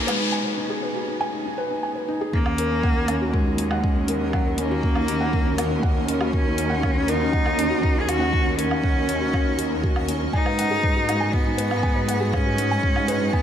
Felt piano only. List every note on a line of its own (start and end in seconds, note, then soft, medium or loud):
0.00 0.19 D#4 loud
0.00 0.95 F#4 medium
0.00 0.70 G#4 loud
0.00 0.07 B4 loud
0.00 0.32 G#5 loud
0.07 0.19 B4 loud
0.19 0.32 D#4 medium
0.32 0.45 G#5 medium
0.45 0.57 B4 medium
0.58 0.65 D#4 loud
0.70 0.82 G#4 loud
0.83 0.95 B4 medium
0.95 1.08 F#4 medium
1.08 1.20 D#4 medium
1.21 1.33 G#5 loud
1.33 1.40 D#4 medium
1.46 1.53 D#4 medium
1.58 1.70 B4 loud
1.71 1.83 D#4 medium
1.83 1.95 G#5 medium
1.95 2.08 B4 medium
2.08 2.15 D#4 loud
2.21 2.33 G#4 loud
2.33 2.40 C#4 medium
2.46 2.53 C#4 medium
2.59 2.70 A#4 loud
2.71 2.83 C#4 medium
2.84 2.95 F#5 medium
2.97 3.08 A#4 medium
3.09 3.16 C#4 loud
3.21 3.33 F#4 loud
3.34 3.45 A#4 medium
3.46 3.58 D#4 medium
3.58 3.70 C#4 medium
3.71 3.83 F#5 loud
3.83 3.91 C#4 medium
3.96 4.03 C#4 medium
4.09 4.20 A#4 loud
4.21 4.33 C#4 medium
4.34 4.45 F#5 medium
4.47 4.58 A#4 medium
4.59 4.66 C#4 loud
4.71 4.83 F#4 loud
4.97 5.08 D#4 medium
5.09 5.20 C#4 medium
5.21 5.33 F#5 loud
5.33 5.40 C#4 medium
5.45 5.53 C#4 medium
5.58 5.70 A#4 loud
5.70 5.82 C#4 medium
5.83 5.95 F#5 medium
5.95 6.07 A#4 medium
6.08 6.15 C#4 loud
6.21 6.33 F#4 loud
6.33 6.45 A#4 medium
6.46 6.58 D#4 medium
6.58 6.70 C#4 medium
6.70 6.82 F#5 loud
6.83 6.90 C#4 medium
6.95 7.03 C#4 medium
7.08 7.20 A#4 loud
7.21 7.33 C#4 medium
7.32 7.45 F#5 medium
7.45 7.57 A#4 medium
7.58 7.65 C#4 medium
7.70 7.82 F#4 loud
7.83 7.95 A#4 medium
7.95 8.07 D#4 medium
8.08 8.20 C#4 medium
8.20 8.32 F#5 loud
8.33 8.40 C#4 medium
8.45 8.53 C#4 medium
8.58 8.70 A#4 loud
8.70 8.83 C#4 medium
8.83 8.95 F#5 medium
8.96 9.08 A#4 medium
9.08 9.15 C#4 loud
9.21 9.33 F#4 loud
9.33 9.45 A#4 medium
9.46 9.58 D#4 medium
9.57 9.65 F#4 medium
9.70 9.83 A#4 medium
9.83 9.95 F#4 loud
9.95 10.03 C#4 medium
10.08 10.19 C#4 loud
10.20 10.33 C#4 medium
10.33 10.45 G#5 medium
10.45 10.58 B4 medium
10.58 10.70 F#5 medium
10.71 10.83 G#4 loud
10.83 10.95 B4 medium
10.96 11.08 F#4 medium
11.08 11.20 D#4 medium
11.21 11.33 G#5 loud
11.33 11.40 D#4 medium
11.45 11.53 D#4 medium
11.58 11.70 B4 loud
11.71 11.83 D#4 medium
11.83 11.95 G#5 medium
11.96 12.08 B4 medium
12.08 12.20 F#5 medium
12.21 12.33 G#4 loud
12.34 12.45 B4 medium
12.46 12.58 F#4 medium
12.59 12.70 D#4 medium
12.71 12.83 G#5 loud
12.84 12.91 D#4 medium
12.96 13.03 D#4 medium
13.08 13.20 B4 loud
13.21 13.33 D#4 medium
13.33 13.42 G#5 medium